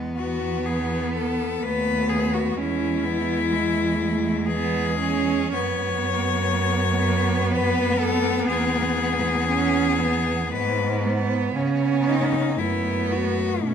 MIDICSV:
0, 0, Header, 1, 5, 480
1, 0, Start_track
1, 0, Key_signature, 4, "major"
1, 0, Tempo, 970874
1, 802, Tempo, 944882
1, 1287, Time_signature, 3, 2, 24, 8
1, 2242, Tempo, 1073345
1, 2722, Tempo, 988468
1, 4642, Tempo, 1041667
1, 6605, End_track
2, 0, Start_track
2, 0, Title_t, "Cello"
2, 0, Program_c, 0, 42
2, 81, Note_on_c, 0, 66, 98
2, 325, Note_on_c, 0, 68, 94
2, 332, Note_off_c, 0, 66, 0
2, 562, Note_off_c, 0, 68, 0
2, 565, Note_on_c, 0, 69, 100
2, 805, Note_on_c, 0, 71, 117
2, 812, Note_off_c, 0, 69, 0
2, 1043, Note_on_c, 0, 68, 108
2, 1050, Note_off_c, 0, 71, 0
2, 1167, Note_on_c, 0, 66, 101
2, 1174, Note_off_c, 0, 68, 0
2, 1289, Note_on_c, 0, 64, 127
2, 1297, Note_off_c, 0, 66, 0
2, 2246, Note_on_c, 0, 68, 122
2, 2253, Note_off_c, 0, 64, 0
2, 2719, Note_off_c, 0, 68, 0
2, 2721, Note_on_c, 0, 73, 127
2, 3682, Note_on_c, 0, 71, 120
2, 3690, Note_off_c, 0, 73, 0
2, 3919, Note_on_c, 0, 69, 127
2, 3926, Note_off_c, 0, 71, 0
2, 4152, Note_off_c, 0, 69, 0
2, 4155, Note_on_c, 0, 68, 127
2, 5116, Note_on_c, 0, 71, 119
2, 5123, Note_off_c, 0, 68, 0
2, 5358, Note_off_c, 0, 71, 0
2, 5833, Note_on_c, 0, 63, 119
2, 6073, Note_on_c, 0, 64, 103
2, 6080, Note_off_c, 0, 63, 0
2, 6317, Note_on_c, 0, 66, 109
2, 6324, Note_off_c, 0, 64, 0
2, 6567, Note_on_c, 0, 61, 98
2, 6574, Note_off_c, 0, 66, 0
2, 6605, Note_off_c, 0, 61, 0
2, 6605, End_track
3, 0, Start_track
3, 0, Title_t, "Cello"
3, 0, Program_c, 1, 42
3, 0, Note_on_c, 1, 56, 75
3, 82, Note_off_c, 1, 56, 0
3, 85, Note_on_c, 1, 59, 94
3, 790, Note_off_c, 1, 59, 0
3, 806, Note_on_c, 1, 59, 101
3, 1284, Note_on_c, 1, 61, 90
3, 1292, Note_off_c, 1, 59, 0
3, 1524, Note_on_c, 1, 59, 97
3, 1532, Note_off_c, 1, 61, 0
3, 1763, Note_on_c, 1, 56, 85
3, 1771, Note_off_c, 1, 59, 0
3, 1995, Note_on_c, 1, 57, 92
3, 2002, Note_off_c, 1, 56, 0
3, 2244, Note_on_c, 1, 59, 110
3, 2251, Note_off_c, 1, 57, 0
3, 2481, Note_off_c, 1, 59, 0
3, 2484, Note_on_c, 1, 61, 116
3, 2726, Note_on_c, 1, 59, 114
3, 2734, Note_off_c, 1, 61, 0
3, 4639, Note_off_c, 1, 59, 0
3, 4642, Note_on_c, 1, 61, 110
3, 4879, Note_on_c, 1, 59, 102
3, 4886, Note_off_c, 1, 61, 0
3, 5118, Note_off_c, 1, 59, 0
3, 5121, Note_on_c, 1, 56, 99
3, 5363, Note_on_c, 1, 59, 112
3, 5370, Note_off_c, 1, 56, 0
3, 5597, Note_on_c, 1, 61, 109
3, 5604, Note_off_c, 1, 59, 0
3, 6072, Note_on_c, 1, 59, 99
3, 6078, Note_off_c, 1, 61, 0
3, 6560, Note_off_c, 1, 59, 0
3, 6562, Note_on_c, 1, 57, 99
3, 6605, Note_off_c, 1, 57, 0
3, 6605, End_track
4, 0, Start_track
4, 0, Title_t, "Cello"
4, 0, Program_c, 2, 42
4, 0, Note_on_c, 2, 59, 72
4, 805, Note_on_c, 2, 57, 77
4, 812, Note_off_c, 2, 59, 0
4, 1284, Note_off_c, 2, 57, 0
4, 1287, Note_on_c, 2, 56, 82
4, 2705, Note_off_c, 2, 56, 0
4, 2725, Note_on_c, 2, 59, 92
4, 5579, Note_off_c, 2, 59, 0
4, 5594, Note_on_c, 2, 59, 88
4, 6050, Note_off_c, 2, 59, 0
4, 6066, Note_on_c, 2, 57, 87
4, 6605, Note_off_c, 2, 57, 0
4, 6605, End_track
5, 0, Start_track
5, 0, Title_t, "Cello"
5, 0, Program_c, 3, 42
5, 0, Note_on_c, 3, 40, 78
5, 804, Note_off_c, 3, 40, 0
5, 806, Note_on_c, 3, 39, 84
5, 1279, Note_off_c, 3, 39, 0
5, 1288, Note_on_c, 3, 40, 86
5, 2706, Note_off_c, 3, 40, 0
5, 2725, Note_on_c, 3, 42, 101
5, 4146, Note_off_c, 3, 42, 0
5, 4162, Note_on_c, 3, 40, 92
5, 5118, Note_on_c, 3, 44, 103
5, 5125, Note_off_c, 3, 40, 0
5, 5594, Note_off_c, 3, 44, 0
5, 5597, Note_on_c, 3, 49, 87
5, 6070, Note_on_c, 3, 42, 86
5, 6077, Note_off_c, 3, 49, 0
5, 6557, Note_off_c, 3, 42, 0
5, 6560, Note_on_c, 3, 47, 89
5, 6605, Note_off_c, 3, 47, 0
5, 6605, End_track
0, 0, End_of_file